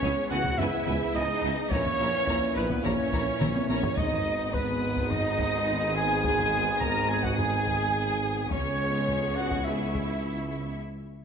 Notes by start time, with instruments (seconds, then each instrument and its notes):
Already playing: trombone section G#2 E3, french horn section B3 G#4, cello section C#4, trumpet C#5, violin section C#5
0.02 tuba C#2, double bass section C#2, viola section B3 E4, violin section G#5, taiko
0.30 double bass section C#2, tuba C#2, viola section B3 E4, cello section F#4, trumpet F#5, violin section F#5 G#5
0.44 taiko
0.57 tuba C#2, double bass section C#2, viola section B3 E4, cello section E4, trumpet E5, violin section E5 G#5, taiko low
0.86 tuba C#2, double bass section C#2, viola section B3 E4, violin section G#5, taiko
1.14 double bass section C#2, tuba C#2, viola section B3 E4, cello section D#4, trumpet D#5, violin section D#5 G#5
1.41 double bass section C#2, tuba C#2, viola section B3 E4
1.46 violin section G#5
1.70 double bass section A#1, tuba A#1, french horn section A#3 E4, viola section A#3 E4, cello section C#4, violin section C#5, trumpet C#5, taiko
1.74 trombone section A#2, violin section A#5
1.86 taiko low
1.99 tuba A#1, double bass section A#1, viola section A#3 E4, violin section A#5
2.27 double bass section A#1, tuba A#1, viola section A#3 E4, violin section A#5, taiko
2.55 double bass section A#1, tuba A#1, viola section A#3 E4, cello section B3, violin section B4 A#5, trumpet B4
2.70 taiko
2.83 tuba A#1, double bass section A#1, viola section A#3 E4, cello section C#4, violin section C#5 A#5, trumpet C#5, taiko low
3.11 double bass section A#1, tuba A#1, viola section A#3 E4, violin section A#5, taiko
3.39 double bass section A#1, tuba A#1, viola section A#3 E4, violin section A#5, taiko mid
3.56 taiko high
3.68 double bass section A#1, tuba A#1, viola section A#3 E4, cello section C#4, trumpet C#5, violin section C#5 A#5, taiko high
3.84 taiko low
3.97 double bass section G#1, tuba G#1, trombone section G#2 G#3, french horn section B3 D#4, viola section B3 G#4, cello section D#4, violin section D#5 D#6, trumpet D#5, taiko
4.12 taiko low
4.54 cello section B3, trumpet B4, violin section B4, taiko
4.97 taiko
5.09 cello section D#4, violin section D#5, trumpet D#5, taiko low
5.39 taiko
5.95 cello section G#4, violin section G#5, trumpet G#5
6.24 cello section G#4, violin section G#5, trumpet G#5, taiko
6.39 taiko low
6.80 cello section A#4, trumpet A#5, violin section A#5, taiko
7.09 cello section G#4, trumpet G#5, violin section G#5
7.23 cello section F#4, trumpet F#5, violin section F#5, taiko
7.37 cello section G#4, trumpet G#5, violin section G#5, taiko low
7.67 taiko
8.50 double bass section C#2, tuba C#2, trombone section G#2 G#3, viola section B3 G#4, french horn section B3 C#4, cello section C#4, trumpet C#5, violin section C#5 C#6, taiko
9.09 taiko
9.36 cello section F#4, trumpet F#5, violin section F#5
9.51 taiko
9.65 cello section E4, trumpet E5, violin section E5
9.95 taiko